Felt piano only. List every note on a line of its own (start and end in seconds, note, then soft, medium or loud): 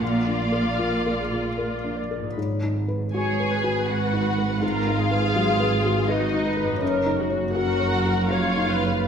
0.00 2.33 A#2 soft
0.00 0.17 A#4 soft
0.26 0.68 D4 soft
0.52 0.94 A#4 soft
0.79 1.21 F4 soft
1.06 1.48 A#4 soft
1.32 1.74 F4 soft
1.58 2.00 A#4 soft
1.84 2.26 D4 soft
2.11 2.37 A#4 soft
2.37 4.59 G#2 soft
2.63 3.04 D#4 soft
2.88 3.29 B4 soft
3.14 3.54 F#4 soft
3.40 3.80 B4 soft
3.64 4.04 F#4 soft
3.89 4.28 B4 soft
4.13 4.53 D#4 soft
4.38 4.77 B4 soft
4.61 6.77 G#2 soft
4.87 5.26 D#4 soft
5.11 5.51 B4 soft
5.36 5.75 F#3 soft
5.60 5.99 B4 soft
5.85 6.24 F#4 soft
6.10 6.48 B4 soft
6.34 6.72 D#4 soft
6.57 6.81 B4 soft
6.81 9.08 F#2 medium
7.06 7.45 D#4 soft
7.30 7.70 C#5 soft
7.55 7.95 F#4 soft
7.79 8.21 C#5 soft
8.05 8.47 F#4 soft
8.31 8.73 C#5 soft
8.57 9.01 D#4 soft
8.85 9.08 C#5 soft